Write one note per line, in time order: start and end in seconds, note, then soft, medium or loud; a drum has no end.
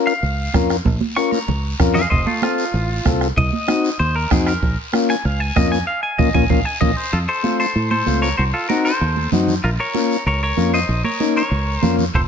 0.00 0.13 C#4 medium
0.00 0.13 F4 medium
0.00 0.13 A#4 loud
0.07 0.53 F5 medium
0.07 short guiro medium
0.23 0.48 C#2 medium
0.23 high conga soft
0.23 long guiro medium
0.53 0.79 F2 medium
0.53 0.76 C#4 medium
0.53 0.76 F4 medium
0.53 0.77 A#4 loud
0.53 bombo low medium
0.53 bombo rim medium
0.53 high conga medium
0.53 short guiro medium
0.70 bombo rim medium
0.70 short guiro medium
0.85 0.98 A#1 loud
0.85 bombo low medium
0.85 high conga medium
0.85 long guiro medium
1.01 high conga loud
1.16 1.39 C#4 medium
1.16 1.39 F4 medium
1.16 1.39 A#4 medium
1.16 1.31 C#6 medium
1.16 bombo rim medium
1.16 short guiro medium
1.31 1.62 A#5 medium
1.31 high conga medium
1.31 short guiro medium
1.48 1.73 C#2 medium
1.48 low conga medium
1.48 long guiro medium
1.79 2.05 F2 medium
1.79 2.02 C#4 medium
1.79 2.02 F4 medium
1.79 2.02 A#4 loud
1.79 bombo low medium
1.79 bombo rim medium
1.79 short guiro medium
1.94 2.09 G#4 medium
1.94 2.10 F5 medium
1.94 low conga medium
1.94 short guiro medium
2.10 2.24 F1 loud
2.10 2.25 C5 medium
2.10 2.26 D#5 medium
2.10 bombo low medium
2.10 high conga soft
2.10 long guiro medium
2.26 2.41 A3 medium
2.26 2.42 F4 medium
2.26 high conga medium
2.42 2.65 C4 medium
2.42 2.65 F4 medium
2.42 3.04 F4 medium
2.42 2.65 A4 medium
2.42 bombo rim medium
2.42 high conga medium
2.42 short guiro medium
2.58 short guiro medium
2.74 2.99 A1 medium
2.74 high conga soft
2.74 long guiro medium
3.05 3.31 C2 medium
3.05 3.27 C4 medium
3.05 3.28 F4 medium
3.05 3.28 A4 loud
3.05 bombo low medium
3.05 bombo rim medium
3.05 high conga medium
3.05 short guiro medium
3.21 bombo rim medium
3.21 short guiro medium
3.37 3.49 C2 loud
3.37 3.98 D#5 loud
3.37 bombo low medium
3.37 high conga soft
3.37 long guiro medium
3.53 high conga medium
3.68 3.90 C4 medium
3.68 3.90 D#4 medium
3.68 3.90 F#4 medium
3.68 bombo rim medium
3.68 high conga medium
3.68 short guiro medium
3.84 short guiro medium
3.99 4.25 D#2 loud
3.99 4.15 C5 medium
3.99 high conga soft
3.99 long guiro medium
4.16 4.31 A#4 medium
4.31 4.56 F2 medium
4.31 4.53 C4 medium
4.31 4.53 D#4 medium
4.31 4.53 F#4 medium
4.31 4.47 G#4 medium
4.31 bombo low medium
4.31 bombo rim medium
4.31 high conga medium
4.31 low conga medium
4.31 short guiro medium
4.47 4.77 A#4 medium
4.47 bombo rim medium
4.47 short guiro medium
4.62 4.75 A#1 loud
4.62 bombo low medium
4.62 high conga soft
4.62 long guiro medium
4.93 5.15 A#3 medium
4.93 5.15 C#4 medium
4.93 5.15 F4 medium
4.93 bombo rim medium
4.93 high conga medium
4.93 short guiro medium
5.09 5.25 G#5 loud
5.09 short guiro medium
5.25 5.50 C#2 loud
5.25 5.40 F5 medium
5.25 high conga soft
5.25 long guiro medium
5.40 5.56 G#5 medium
5.56 5.82 F2 medium
5.56 5.78 A#3 medium
5.56 5.78 C#4 medium
5.56 5.79 F4 medium
5.56 5.72 D#5 medium
5.56 bombo low medium
5.56 bombo rim medium
5.56 high conga medium
5.56 short guiro medium
5.72 5.87 G#5 loud
5.72 short guiro medium
5.87 6.02 F5 medium
6.03 6.18 G#5 medium
6.18 6.31 A#1 loud
6.18 6.29 A#3 loud
6.18 6.29 C#4 loud
6.18 6.29 F4 loud
6.18 6.34 D#5 medium
6.18 bombo low loud
6.18 low conga medium
6.18 long guiro loud
6.34 6.46 A#1 medium
6.34 6.45 A#3 loud
6.34 6.45 C#4 loud
6.34 6.45 F4 loud
6.34 6.50 G#5 medium
6.34 bombo low loud
6.34 low conga medium
6.34 long guiro loud
6.50 6.62 A#1 medium
6.50 6.60 A#3 medium
6.50 6.60 C#4 medium
6.50 6.60 F4 medium
6.50 6.65 F5 medium
6.50 bombo low loud
6.50 low conga loud
6.50 long guiro medium
6.65 6.80 G#5 medium
6.81 6.93 A#1 medium
6.81 6.91 A#3 loud
6.81 6.91 C#4 medium
6.81 6.91 F4 loud
6.81 6.97 D#5 medium
6.81 bombo low loud
6.81 low conga loud
6.81 long guiro loud
6.97 7.12 C5 medium
7.12 7.26 F2 loud
7.12 7.18 F4 medium
7.12 7.17 A4 medium
7.12 high conga soft
7.12 long guiro medium
7.29 7.58 A4 medium
7.29 7.58 C5 medium
7.43 7.66 A3 medium
7.43 7.66 C4 medium
7.43 7.66 F4 medium
7.43 high conga medium
7.43 short guiro medium
7.60 7.89 A4 medium
7.60 7.89 C5 loud
7.60 short guiro medium
7.75 8.01 A2 medium
7.75 high conga soft
7.75 long guiro medium
7.91 8.21 A4 medium
7.91 8.20 C5 loud
7.91 high conga medium
8.06 8.32 C#2 medium
8.06 8.29 A3 medium
8.06 8.29 C4 medium
8.06 8.29 F4 medium
8.06 high conga medium
8.06 short guiro medium
8.22 8.37 A#4 medium
8.22 8.37 C#5 loud
8.22 short guiro medium
8.37 8.51 C2 loud
8.37 8.43 F#4 medium
8.37 8.42 C5 loud
8.37 high conga soft
8.37 long guiro medium
8.54 8.68 F4 medium
8.54 8.68 A4 medium
8.69 8.92 C4 medium
8.69 8.92 D#4 medium
8.69 8.84 F#4 medium
8.69 8.92 F#4 medium
8.69 8.85 A#4 medium
8.69 high conga medium
8.69 short guiro medium
8.85 9.29 A4 medium
8.85 9.29 C5 medium
8.85 short guiro medium
9.01 9.26 D#2 medium
9.01 high conga soft
9.01 long guiro medium
9.16 high conga medium
9.32 9.57 F#2 medium
9.32 9.54 C4 medium
9.32 9.55 D#4 medium
9.32 9.55 F#4 medium
9.32 high conga medium
9.32 low conga medium
9.32 short guiro medium
9.47 low conga medium
9.47 short guiro medium
9.63 9.76 A#1 loud
9.63 9.69 F4 medium
9.63 9.69 A#4 medium
9.63 high conga soft
9.63 long guiro medium
9.80 10.23 A#4 medium
9.80 10.24 C#5 medium
9.94 10.17 A#3 medium
9.94 10.17 C#4 medium
9.94 10.17 F4 medium
9.94 high conga medium
9.94 short guiro medium
10.11 short guiro medium
10.26 10.51 C#2 medium
10.26 10.41 A#4 medium
10.26 10.41 C#5 medium
10.26 high conga soft
10.26 long guiro medium
10.43 10.72 A#4 medium
10.43 10.74 C#5 medium
10.57 10.83 F2 medium
10.57 10.79 A#3 medium
10.57 10.79 C#4 medium
10.57 10.80 F4 medium
10.57 high conga medium
10.57 short guiro medium
10.74 11.03 C5 medium
10.74 11.05 D#5 medium
10.74 short guiro medium
10.88 11.01 A#1 loud
10.88 high conga soft
10.88 long guiro medium
11.04 11.34 A#4 medium
11.04 11.36 C#5 medium
11.04 high conga medium
11.20 11.42 A#3 medium
11.20 11.42 C#4 medium
11.20 11.42 D#4 medium
11.20 high conga medium
11.20 short guiro medium
11.36 11.95 A#4 medium
11.36 11.78 C#5 medium
11.36 short guiro medium
11.51 11.76 C#2 medium
11.51 high conga soft
11.51 long guiro medium
11.78 12.04 A#3 medium
11.78 12.05 C#4 medium
11.78 11.95 C5 medium
11.82 12.08 F2 medium
11.82 12.05 F4 loud
11.82 high conga medium
11.82 low conga medium
11.82 short guiro medium
11.98 low conga medium
11.98 short guiro medium
12.14 12.27 F1 loud
12.14 12.20 A4 medium
12.14 12.20 C5 medium
12.14 bombo low medium
12.14 high conga soft
12.14 long guiro medium